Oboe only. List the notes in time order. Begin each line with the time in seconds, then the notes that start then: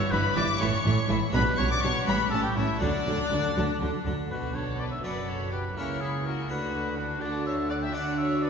Already playing: C#5
0.11 B4
0.36 D5
0.60 C#5
1.33 B4
1.58 C#5
1.71 D5
1.83 C#5
2.06 B4
2.30 A4
2.43 G4
2.55 E4
2.80 D4
4.30 B4
4.55 C#5
4.80 D5
4.91 E5
5.04 D5
5.28 C#5
5.52 B4
5.77 A#4
6.00 G#4
6.26 A#4
6.50 B4
6.97 F#4
7.21 D5
7.46 E5
7.69 F#5
7.82 G5
7.94 F#5
8.18 E5
8.42 D5